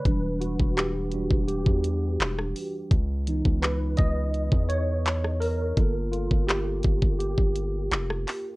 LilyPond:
<<
  \new Staff \with { instrumentName = "Tine electric piano" } { \time 4/4 \key e \dorian \tempo 4 = 84 << { b'8 fis'8 g'4 g'4. r8 | r4 b'8 dis''4 cis''4 ais'8~ | ais'8 f'8 g'4 g'4. r8 | } \\ { <e g d'>4. <g d' fis'>8 r2 | r8 <e b dis'>8 r2. | <bes f' a'>1 | } >> }
  \new Staff \with { instrumentName = "808-style bass" } { \clef bass \time 4/4 \key e \dorian e,,8. e,,4 e,,8 e,8. e,,8 r8 | cis,8. cis,8. cis,8. e,4.~ e,16 | g,,8. g,,8. g,,8. g,,8. f,,8 r8 | }
  \new DrumStaff \with { instrumentName = "Drums" } \drummode { \time 4/4 <hh bd>8 hh16 bd16 <hc hh>8 hh16 bd16 hh16 bd16 hh8 <hc hh>16 ss16 hho8 | <hh bd>8 hh16 bd16 <hc hh>8 <hh bd>8 hh16 bd16 hh8 <hc hh>16 ss16 hho8 | <hh bd>8 hh16 bd16 <hc hh>8 <hh bd>16 bd16 hh16 bd16 hh8 <hc hh>16 ss16 <hc hho>8 | }
>>